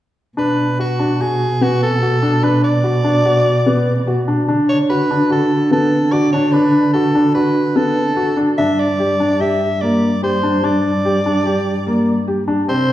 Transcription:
0.37 cello B2, felt piano D4, soprano saxophone B4
0.79 felt piano F#4, soprano saxophone F#4
0.99 felt piano D4
1.20 felt piano F#4, soprano saxophone G#4
1.61 felt piano B3, soprano saxophone F#4
1.83 soprano saxophone A4
2.02 felt piano F#4
2.22 felt piano D4
2.43 felt piano D4, soprano saxophone B4
2.64 soprano saxophone D5
2.83 felt piano F#4
3.04 felt piano D4
3.25 felt piano F#4
3.66 felt piano B3
4.07 felt piano F#4
4.28 felt piano D4
4.48 cello D3, felt piano D4
4.69 soprano saxophone C#5
4.90 felt piano F#4, soprano saxophone B4
5.11 felt piano D4
5.30 felt piano F#4, soprano saxophone A4
5.71 felt piano B3, soprano saxophone A4
6.12 felt piano F#4, soprano saxophone D5
6.33 felt piano D4, soprano saxophone C#5
6.52 felt piano D4, soprano saxophone B4
6.93 felt piano F#4, soprano saxophone A4
7.15 felt piano D4
7.35 felt piano F#4, soprano saxophone B4
7.76 felt piano B3, soprano saxophone A4
8.16 felt piano F#4
8.37 felt piano D4
8.58 cello G2, felt piano D4, soprano saxophone E5
8.79 soprano saxophone D5
8.99 felt piano G4
9.20 felt piano D4
9.40 felt piano G4, soprano saxophone E5
9.81 felt piano A#3, soprano saxophone D5
10.23 felt piano G4, soprano saxophone C5
10.43 felt piano D4
10.64 felt piano D4, soprano saxophone D5
11.05 felt piano G4
11.26 felt piano D4
11.46 felt piano G4
11.87 felt piano A#3
12.28 felt piano G4
12.48 felt piano D4
12.68 cello C3, felt piano C4, soprano saxophone C5

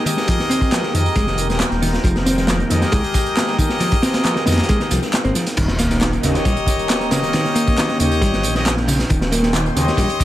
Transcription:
Already playing: analog synth pad D#3 G#3 A#4 G5
0.05 picked electric bass D#3, brass ensemble G4 G#4 A#4 D#5, closed hi-hat, tambourine
0.17 snare, tambourine
0.28 picked electric bass F3, kick, closed hi-hat, tambourine
0.39 snare, tambourine
0.50 picked electric bass C4, closed hi-hat, tambourine
0.61 kick, tambourine
0.72 picked electric bass F3, snare, clap, closed hi-hat, tambourine
0.83 snare, tambourine
0.94 detuned saw bass F2, picked electric bass D#3, brass ensemble G4 G#4 A#4 D#5, closed hi-hat, tambourine
1.06 tambourine
1.16 detuned saw bass F1, picked electric bass G#3, kick, closed hi-hat, tambourine
1.27 snare, tambourine
1.38 closed hi-hat, tambourine
1.49 detuned saw bass D#1, brass ensemble G4 G#4 A#4 D#5, snare, tambourine
1.60 snare, clap, closed hi-hat, tambourine
1.71 detuned saw bass D#1, snare, tambourine
1.82 picked electric bass D#3, snare, open hi-hat, tambourine
1.94 snare, tambourine
2.04 detuned saw bass F1, picked electric bass F3, kick, closed hi-hat, tambourine
2.16 snare, tambourine
2.26 picked electric bass C4, snare, closed hi-hat, tambourine
2.38 snare, tambourine
2.47 picked electric bass F3, snare, clap, closed hi-hat, tambourine
2.60 tambourine
2.70 detuned saw bass F2, picked electric bass D#3, brass ensemble G4 G#4 A#4 D#5, snare, closed hi-hat, tambourine
2.82 snare, tambourine
2.92 detuned saw bass C2, picked electric bass G#3, kick, closed hi-hat, tambourine
3.04 closed hi-hat, tambourine
3.14 kick, closed hi-hat, tambourine
3.26 tambourine
3.37 snare, clap, closed hi-hat, tambourine
3.48 snare, tambourine
3.58 picked electric bass D#3, brass ensemble G4 G#4 A#4 D#5, kick, closed hi-hat, tambourine
3.69 snare, tambourine
3.80 picked electric bass F3, snare, closed hi-hat, tambourine
3.92 kick, closed hi-hat, tambourine
4.02 picked electric bass C4, snare, closed hi-hat, tambourine
4.14 snare, closed hi-hat, tambourine
4.24 picked electric bass F3, snare, clap, closed hi-hat, tambourine
4.36 snare, tambourine
4.46 detuned saw bass F2, picked electric bass D#3, brass ensemble G4 G#4 A#4 D#5, snare, closed hi-hat, tambourine
4.52 snare, closed hi-hat
4.58 snare, closed hi-hat, tambourine
4.63 snare, closed hi-hat
4.69 picked electric bass G#3, kick, closed hi-hat, tambourine
4.80 snare, tambourine
4.91 detuned saw bass C2, picked electric bass F3, snare, closed hi-hat, tambourine
5.02 snare, tambourine
5.13 snare, clap, closed hi-hat, tambourine
5.24 detuned saw bass G#1, picked electric bass C4, tambourine
5.35 picked electric bass F3, snare, tambourine
5.47 snare, closed hi-hat, tambourine
5.57 detuned saw bass D#1, picked electric bass D#3, analog synth pad D#3 C#4 A#4 G5, kick, closed hi-hat, crash, tambourine, sub drop
5.68 snare, tambourine
5.79 picked electric bass A#3, snare, closed hi-hat, tambourine
5.90 snare, tambourine
6.01 picked electric bass D#3, snare, clap, closed hi-hat, tambourine
6.13 tambourine
6.23 detuned saw bass D#2, picked electric bass C#3, brass ensemble G4 C#5 D#5, snare, closed hi-hat, tambourine
6.34 snare, tambourine
6.45 detuned saw bass A#1, picked electric bass G3, kick, closed hi-hat, tambourine
6.57 closed hi-hat, tambourine
6.67 kick, closed hi-hat, tambourine
6.79 tambourine
6.89 snare, clap, closed hi-hat, tambourine
7.00 snare, tambourine
7.11 picked electric bass C#3, brass ensemble G4 C#5 D#5, snare, closed hi-hat, tambourine
7.23 snare, tambourine
7.33 picked electric bass D#3, snare, closed hi-hat, tambourine
7.45 snare, tambourine
7.55 picked electric bass A#3, closed hi-hat, tambourine
7.67 kick, tambourine
7.77 picked electric bass D#3, snare, clap, closed hi-hat, tambourine
7.88 snare, tambourine
8.00 detuned saw bass D#2, picked electric bass C#3, brass ensemble G4 C#5 D#5, closed hi-hat, tambourine
8.11 tambourine
8.21 detuned saw bass G1, picked electric bass G3, kick, closed hi-hat, tambourine
8.33 snare, tambourine
8.43 detuned saw bass A#1, closed hi-hat, tambourine
8.55 brass ensemble G4 C#5 D#5, snare, tambourine
8.66 snare, clap, closed hi-hat, tambourine
8.77 snare, tambourine
8.88 picked electric bass C#3, snare, open hi-hat, tambourine
8.99 snare, tambourine
9.10 detuned saw bass D#1, picked electric bass D#3, analog synth pad C6, kick, closed hi-hat, tambourine
9.21 snare, tambourine
9.32 picked electric bass A#3, snare, closed hi-hat, tambourine
9.43 snare, tambourine
9.53 picked electric bass D#3, snare, clap, closed hi-hat, tambourine
9.66 tambourine
9.76 detuned saw bass D#2, picked electric bass C#3, brass ensemble G4 C#5 D#5, snare, closed hi-hat, tambourine
9.88 snare, tambourine
9.97 detuned saw bass A#1, picked electric bass G3, kick, closed hi-hat, tambourine
10.10 closed hi-hat, tambourine
10.20 kick, closed hi-hat, tambourine

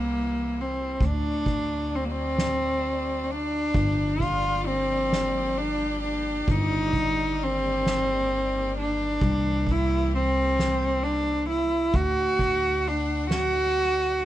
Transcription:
Already playing: upright bass C2, string section C3 E3 G3 A#3 E4, cello A#3
0.09 ride
0.54 ride
0.61 cello C4
1.00 upright bass D2, string section F#3 A3 D5, kick
1.05 cello D4
1.46 kick, ride
1.92 cello C4, ride
2.05 cello A#3
2.11 cello C4
2.38 snare, ride
2.83 ride
3.24 cello C4
3.29 cello D4, ride
3.74 upright bass G1, string section F3 G3 A#3 G4, kick, ride
4.20 cello F4, kick, ride
4.67 cello C4
5.12 snare
5.57 cello D4, ride
6.03 cello D4, ride
6.47 upright bass G1, string section D#3 G3 A#3, kick
6.51 cello D#4
6.93 kick
7.40 cello C4, ride
7.85 snare, ride
8.31 ride
8.77 cello D4, ride
9.20 upright bass C2, string section E3 G3 C4 G4, kick, ride
9.67 kick, ride
9.71 cello E4
10.13 cello C4, ride
10.59 snare, ride
11.04 cello D4, ride
11.49 cello E4, ride
11.92 upright bass D2, string section A3 D4 F#5, cello F#4, kick, ride
12.39 kick, ride
12.85 cello D4, ride
13.30 cello F#4, snare, ride
14.21 ride

